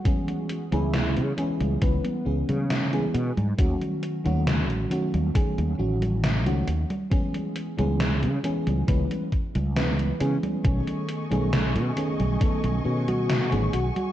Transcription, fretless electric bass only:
\new Staff \with { instrumentName = "Fretless electric bass" } { \clef bass \time 4/4 \key cis \minor \tempo 4 = 68 r8. cis,8 cis16 r16 cis,16 cis,16 r16 cis,16 cis8. b,16 gis,16 | dis,16 r8 dis,8 a,,16 r16 dis,16 r16 dis,16 a,,8. cis,16 dis,16 r16 | r8. cis,8 cis16 r16 cis,16 cis,16 r8 cis,8. cis16 r16 | b,,16 r8 b,,8 b,16 r16 b,,16 r16 b,,16 b,8. a,,16 b,,16 r16 | }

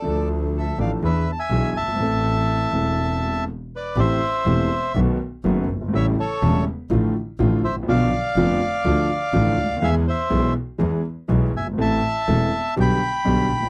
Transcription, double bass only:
\new Staff \with { instrumentName = "Double bass" } { \clef bass \time 4/4 \key a \minor \tempo 4 = 123 d,4. a,,8 e,8 r8 b,,8 g,,8 | a,,4. e,,4. r4 | a,,8 r8 e,,8 r8 b,,8 r8 fis,,8 g,,8 | a,,8 r8 e,,8 r8 a,,8 r8 a,,8 a,,8 |
b,,8 r8 f,,8 r8 d,8 r8 a,,8 d,8 | e,8 r8 b,,8 r8 e,8 r8 b,,8 g,,8 | a,,8 r8 e,,8 r8 b,,8 r8 b,,8 bes,,8 | }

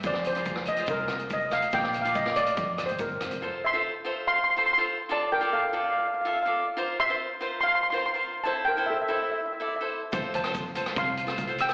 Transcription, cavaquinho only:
\new Staff \with { instrumentName = "Cavaquinho" } { \time 4/4 \key bes \mixolydian \tempo 4 = 143 <f' aes' c''>8 r16 <f' aes' bes'>8 r8 <f' aes' c''>4~ <f' aes' c''>16 r4 | <f' bes' d''>8 r16 <f' bes' d''>16 r16 <f' bes' d''>4~ <f' bes' d''>16 r4. | \key f \major <f' a' c''>8 r16 <f' a' c''>8 r16 <f' a' c''>8. r8 <f' a' c''>16 r16 <f' a' c''>8 r16 | <f' a' d''>8 r16 <f' a' d''>8 r16 <f' a' d''>8. r8 <f' a' e''>16 r16 <f' a' d''>8 r16 |
<f' bes' c''>8 r16 <f' bes' c''>8 r16 <f' bes' c''>8. r8 <f' bes' c''>16 r16 <f' bes' c''>8 r16 | <e' a' c''>8 r16 <e' a' c''>8 r16 <e' a' c''>8. r8 <e' a' d''>16 r16 <e' a' c''>8 r16 | <f' a' c''>8 r16 <f' a' c''>8 r16 <f' a' c''>8. r8 <f' a' c''>16 r16 <f' a' c''>8 r16 | }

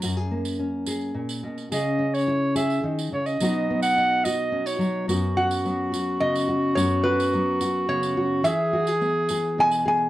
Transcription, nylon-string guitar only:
\new Staff \with { instrumentName = "Nylon-string guitar" } { \time 3/4 \key fis \mixolydian \tempo 4 = 107 << { <cis' fis'>16 gis'16 ais8 cis'8 gis'4. | gis'8 cis'8 e'8 gis'4. | <fis b dis' fis'>8 b8 dis'8 fis'8 cis'16 dis'8. | <b cis' fis'>8 fis'8 b8 fis'8 b8 fis'8 |
<b cis' fis'>8 fis'8 b8 fis'8 b8 fis'8 | <e' gis'>8 fis'16 gis'16 e'8 gis'8 e'8 gis'8 | } \\ { fis,2 ais,8 b,8 | cis2 dis8 cis8 | b,2~ b,8 fis8 | fis,4 fis4 cis4 |
fis,4 fis4 cis4 | e4 b4 b,4 | } >> }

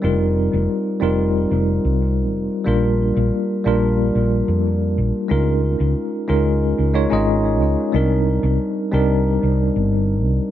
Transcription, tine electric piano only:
\new Staff \with { instrumentName = "Tine electric piano" } { \time 4/4 \key c \minor \tempo 4 = 91 <g c' ees' f' bes'>4. <g c' ees' f' bes'>2~ <g c' ees' f' bes'>8 | <g bes d' f' bes'>4. <g bes d' f' bes'>2~ <g bes d' f' bes'>8 | <aes des' ees' f' bes'>4. <aes des' ees' f' bes'>4 <aes des' ees' f' des''>16 <aes des' ees' f' ees''>4~ <aes des' ees' f' ees''>16 | <g c' d' ees' bes'>4. <g c' d' ees' bes'>2~ <g c' d' ees' bes'>8 | }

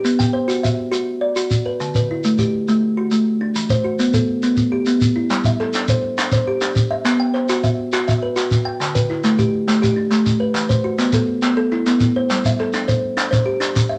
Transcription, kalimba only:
<<
  \new Staff \with { instrumentName = "Kalimba" } { \time 12/8 \key g \major \tempo 4. = 137 g'8 g''8 c''4 e''4. r8 d''4. b'8~ | b'8 b'8 e'4 g'4. r8 fis'4. d'8~ | d'8 c''8 fis'4 a'4. r8 g'4. e'8~ | e'8 e''8 a'4 c''4. c''8 g'4. e''8~ |
e''8 g''8 c''4 e''4. e''8 b'4. g''8~ | g''8 b'8 e'4 g'4. g'8 d'4. b'8~ | b'8 c''8 fis'4 a'4. a'8 e'4. c''8~ | c''8 e''8 a'4 c''4. c''8 g'4. e''8 | }
  \new Staff \with { instrumentName = "Kalimba" } { \time 12/8 \key g \major b4 r8 fis'4 r8 fis'4 r8 fis'4 r8 | d4 r8 a4 r8 a4 r8 a4 r8 | e4 r8 b4 r8 b4 r8 b4 r8 | g4 r8 d'4 r8 d'4 r8 d'4 r8 |
b4 r8 fis'4 r8 fis'4 r8 fis'4 r8 | d4 r8 a4 r8 a4 r8 a4 r8 | e4 r8 b4 r8 b4 r8 b4 r8 | g4 r8 d'4 r8 d'4 r8 d'4 r8 | }
>>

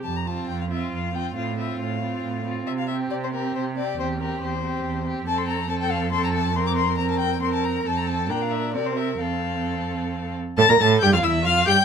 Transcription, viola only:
\new Staff \with { instrumentName = "Viola" } { \time 3/4 \key f \major \tempo 4 = 137 r8 c'4 c'4 c'8 | c'8 c'4 c'4 c'8 | r8 c'4 c'4 c'8 | c'8 c'4 c'4 c'8 |
c'4 c'4 c'4 | c'4 c'4 c'4 | c'4 d'4 c'4 | c'2~ c'8 r8 |
a'16 bes'16 a'8 g'16 f'16 e'8 f'8 g'8 | }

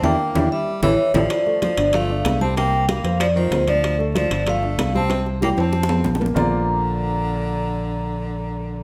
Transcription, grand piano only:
\new Staff \with { instrumentName = "Grand piano" } { \time 4/4 \key bes \major \tempo 4 = 190 <d' e' g'>8 r8 <d' e' g'>8 r4 <e' g' a'>8 r8 <e' g' a'>8 | r8 <a a'>8 <f f'>8 <d d'>8 <f f'>8 <d' d''>4 <g g'>8 | <c c'>4 <g g'>8 <c' c''>4 <f f'>4 <d' d''>8~ | <d' d''>8 <a a'>8 <f f'>8 <d d'>8 <f f'>8 <d' d''>4 <g g'>8 |
<c c'>4 <g g'>8 <c' c''>4 <f f'>4 <bes bes'>8 | <bes f' bes' c'' d''>1~ | <bes f' bes' c'' d''>1 | }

